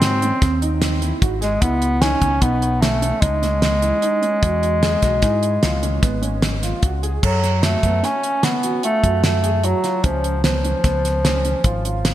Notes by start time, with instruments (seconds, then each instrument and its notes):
Already playing: picked electric bass G#2, bass clarinet C4
0.02 grand piano F#4, snare, closed hi-hat
0.22 grand piano C#4, closed hi-hat
0.42 picked electric bass D#2, grand piano C4, kick, snare, closed hi-hat
0.62 grand piano D#4, closed hi-hat
0.82 snare, closed hi-hat
1.02 grand piano E4, closed hi-hat
1.21 picked electric bass G#1, grand piano F#4, kick, closed hi-hat
1.41 bass clarinet G#3, grand piano G#4, snare, closed hi-hat
1.61 picked electric bass C#2, bass clarinet B3, grand piano E4, kick, closed hi-hat
1.82 closed hi-hat
2.01 bass clarinet C#4, grand piano D#4, snare, closed hi-hat
2.21 picked electric bass C#2, grand piano C#4, kick, closed hi-hat
2.41 picked electric bass B1, bass clarinet B3, grand piano D#4, kick, closed hi-hat
2.62 closed hi-hat
2.81 bass clarinet A3, grand piano C#4, snare, closed hi-hat
3.02 grand piano C#4, closed hi-hat
3.21 picked electric bass C#2, bass clarinet G#3, grand piano D#4, kick, closed hi-hat
3.42 grand piano C#4, snare, closed hi-hat
3.62 snare, closed hi-hat
3.82 grand piano E4, closed hi-hat
4.02 grand piano D#4, closed hi-hat
4.22 grand piano C#4, closed hi-hat
4.42 picked electric bass E2, grand piano F#4, kick, closed hi-hat
4.63 closed hi-hat
4.82 grand piano G#4, snare, closed hi-hat
5.02 picked electric bass B1, grand piano F#4, kick, snare, closed hi-hat
5.22 picked electric bass G#2, grand piano E4, kick, snare, closed hi-hat
5.43 closed hi-hat
5.63 picked electric bass C#2, grand piano F4, snare, closed hi-hat
5.83 grand piano C#4, closed hi-hat
6.02 picked electric bass G#1, grand piano B3, kick, snare, closed hi-hat
6.22 grand piano C#4, closed hi-hat
6.42 snare, closed hi-hat
6.63 grand piano F4, snare, closed hi-hat
6.83 picked electric bass C#2, grand piano F#4, kick, closed hi-hat
7.03 grand piano G#4, closed hi-hat
7.23 picked electric bass F#2, bass clarinet F#3, grand piano A4, kick, crash
7.44 snare, closed hi-hat
7.63 bass clarinet A3, grand piano F#4, snare, closed hi-hat
7.83 picked electric bass F#2, grand piano B3, kick, closed hi-hat
8.03 grand piano C#4, bass clarinet C#4, snare, closed hi-hat
8.23 closed hi-hat
8.43 bass clarinet B3, grand piano C#4, snare, closed hi-hat
8.63 grand piano F#4, closed hi-hat
8.83 bass clarinet A3, grand piano F4, closed hi-hat
9.03 picked electric bass F#2, grand piano F#4, kick, closed hi-hat
9.24 bass clarinet A3, snare, closed hi-hat
9.43 grand piano G#4, closed hi-hat
9.64 bass clarinet F#3, grand piano F#4, closed hi-hat
9.84 grand piano F4, snare, closed hi-hat
10.04 picked electric bass C#2, bass clarinet F3, grand piano C#4, kick, closed hi-hat
10.24 closed hi-hat
10.44 bass clarinet F3, grand piano B3, snare, closed hi-hat
10.64 grand piano C#4, closed hi-hat
10.84 picked electric bass C#2, grand piano B3, kick, snare, closed hi-hat
11.05 snare, closed hi-hat
11.24 grand piano C#4, snare, closed hi-hat
11.45 grand piano C#4, closed hi-hat
11.64 picked electric bass G#1, grand piano F4, kick, closed hi-hat
11.85 grand piano F4, closed hi-hat
12.05 snare, closed hi-hat